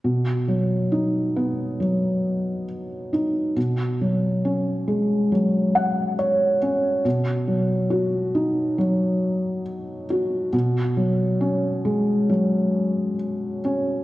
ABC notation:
X:1
M:4/4
L:1/8
Q:1/4=68
K:B
V:1 name="Felt piano"
z8 | z4 z f c2 | z8 | z8 |]
V:2 name="Felt piano" clef=bass
B,, F, D B, F,3 D | B,, F, C G, F,3 C | B,, F, F D F,3 F | B,, F, C G, F,3 C |]